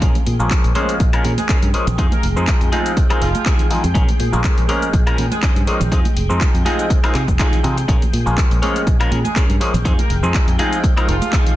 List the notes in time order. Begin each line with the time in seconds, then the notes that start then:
0.02 A#1 F3 G#3 A#3 C#4 G#4 A#4 G5, kick, closed hi-hat, shaker
0.15 closed hi-hat, high conga, low conga, shaker
0.26 A#2, muted clean electric guitar stroke, open hi-hat, shaker
0.39 A#1 F3 G#3 A#3 C#4 G#4, shaker
0.51 muted clean electric guitar stroke, kick, clap, closed hi-hat, shaker
0.64 A#1, muted clean electric guitar stroke, open hi-hat, shaker
0.75 F3 G#3 A#3 C#4 G#4 C5, open hi-hat, high conga, shaker
0.89 closed hi-hat, shaker
1.00 A#1, kick, closed hi-hat, shaker
1.13 F3 G#3 A#3 C#4 G#4 A#4, closed hi-hat, high woodblock, shaker
1.24 A#2, open hi-hat, low conga, shaker
1.38 G#3 G#4, closed hi-hat, high conga, shaker
1.49 F3 G#3 A#3 C#4 G#4 A#4, kick, clap, closed hi-hat, shaker
1.62 G2, closed hi-hat, shaker
1.74 F3 G#3 A#3 C#4 G#4, muted fingered electric bass stroke, open hi-hat
1.87 A#1, muted clean electric guitar stroke, closed hi-hat, low conga, shaker
1.98 F2 F3 G#3 C4 D#4 F4 G#4, kick, closed hi-hat, shaker
2.11 A#3 A#4, closed hi-hat, high conga, low conga, shaker
2.23 F1, muted clean electric guitar stroke, open hi-hat, shaker
2.36 F2 F3 G#3 C4 D#4 G#4, shaker
2.47 muted clean electric guitar stroke, kick, clap, closed hi-hat, shaker
2.61 F2, muted clean electric guitar stroke, open hi-hat, shaker
2.72 F3 G#3 C4 D#4 F4 G#4, open hi-hat, high conga, shaker
2.86 closed hi-hat, shaker
2.97 kick, closed hi-hat, shaker
3.10 F3 G#3 C4 D#4 F4 G#4 A#4, muted fingered electric bass stroke, closed hi-hat, high woodblock, shaker
3.21 F1 F3 F4, open hi-hat
3.35 closed hi-hat, high conga, shaker
3.46 F3 G#3 C4 D#4 F4 G#4, kick, clap, closed hi-hat, shaker
3.59 closed hi-hat, low conga, shaker
3.70 F3 G#3 C4 D#4 G#4, muted fingered electric bass stroke, open hi-hat, low conga, shaker
3.83 F2, muted clean electric guitar stroke, closed hi-hat, shaker
3.94 A#1 F3 G#3 A#3 C#4 G#4 A#4, kick, closed hi-hat, shaker
4.08 muted fingered electric bass stroke, closed hi-hat, high conga, low conga, shaker
4.19 A#2, muted clean electric guitar stroke, open hi-hat, shaker
4.32 A#1 F3 G#3 A#3 C#4 G#4, shaker
4.44 muted clean electric guitar stroke, kick, clap, closed hi-hat, shaker
4.58 A#1, muted clean electric guitar stroke, open hi-hat, shaker
4.68 F3 G#3 A#3 C#4 G#4 A#4, open hi-hat, high conga, shaker
4.82 closed hi-hat, shaker
4.93 A#1, kick, closed hi-hat, shaker
5.06 F3 G#3 A#3 C#4 G#4 A#4, closed hi-hat, high woodblock, shaker
5.18 A#2, open hi-hat, low conga, shaker
5.31 G#3 G#4, closed hi-hat, high conga, shaker
5.42 F3 G#3 A#3 C#4 G#4 C5, kick, clap, closed hi-hat, shaker
5.56 G2, closed hi-hat, shaker
5.67 D#3 F3 G#3 A#3 C#4 D#4 G#4, muted fingered electric bass stroke, open hi-hat, shaker
5.80 A#1, muted clean electric guitar stroke, closed hi-hat, low conga, shaker
5.92 F2 F3 G#3 C4 D#4 F4 G#4, kick, closed hi-hat, shaker
6.05 closed hi-hat, high conga, low conga, shaker
6.16 F1, muted clean electric guitar stroke, open hi-hat, shaker
6.29 F2 F3 G#3 C4 D#4, shaker
6.41 muted clean electric guitar stroke, kick, clap, closed hi-hat, shaker
6.54 F2, muted clean electric guitar stroke, open hi-hat, shaker
6.65 F3 G#3 C4 D#4 F4 G#4, open hi-hat, high conga, shaker
6.79 G#3 G#4, closed hi-hat, shaker
6.90 kick, closed hi-hat, shaker
7.03 F3 G#3 C4 D#4 F4 G#4 A#4, muted fingered electric bass stroke, open hi-hat, high woodblock, shaker
7.15 C3, clap, open hi-hat, shaker
7.28 F1, kick, closed hi-hat, high conga, shaker
7.39 F3 G#3 C4 D#4 F4 G#4, kick, clap, closed hi-hat, shaker
7.52 closed hi-hat, low conga, shaker
7.63 C3 F3 G#3 C4 D#4 G#4, open hi-hat, low conga, shaker
7.77 muted clean electric guitar stroke, closed hi-hat, shaker
7.88 A#1 F3 G#3 A#3 C#4 G#4 A#4 G5, kick, closed hi-hat, shaker
8.02 closed hi-hat, high conga, low conga, shaker
8.13 A#2, muted clean electric guitar stroke, open hi-hat, shaker
8.26 A#1 F3 G#3 A#3 C#4 G#4, shaker
8.37 muted clean electric guitar stroke, kick, clap, closed hi-hat, shaker
8.51 A#1, muted clean electric guitar stroke, open hi-hat, shaker
8.62 F3 G#3 A#3 C#4 G#4 C#5, open hi-hat, high conga, shaker
8.76 closed hi-hat, shaker
8.87 A#1, kick, closed hi-hat, shaker
9.00 F3 G#3 A#3 C#4 G#4 A#4, closed hi-hat, high woodblock, shaker
9.11 A#2, open hi-hat, low conga, shaker
9.25 G#3 G#4, closed hi-hat, high conga, shaker
9.35 F3 G#3 A#3 C#4 G#4, kick, clap, closed hi-hat, shaker
9.37 A#4, shaker
9.49 G2, closed hi-hat, shaker
9.60 F3 G#3 A#3 C#4 G#4, muted fingered electric bass stroke, open hi-hat, shaker
9.74 A#1, muted clean electric guitar stroke, closed hi-hat, low conga, shaker
9.85 F2 F3 G#3 C4 D#4 F4 G#4, kick, closed hi-hat, shaker
9.98 A#3 A#4, muted fingered electric bass stroke, closed hi-hat, high conga, low conga, shaker
10.10 F1, muted clean electric guitar stroke, open hi-hat, shaker
10.23 F2 F3 G#3 C4 D#4 G#4, shaker
10.34 muted clean electric guitar stroke, kick, clap, closed hi-hat, shaker
10.47 F2, muted clean electric guitar stroke, open hi-hat, shaker
10.59 F3 G#3 C4 D#4 F4 G#4, open hi-hat, high conga, shaker
10.73 closed hi-hat, shaker
10.84 kick, closed hi-hat, shaker
10.96 F3 G#3 C4 D#4 F4 A#4, muted fingered electric bass stroke, closed hi-hat, high woodblock, shaker
11.08 F1 F3 F4, open hi-hat, shaker
11.21 closed hi-hat, high conga, shaker
11.33 F3 G#3 C4 D#4 F4 G#4, kick, clap, closed hi-hat, shaker
11.46 closed hi-hat, low conga, shaker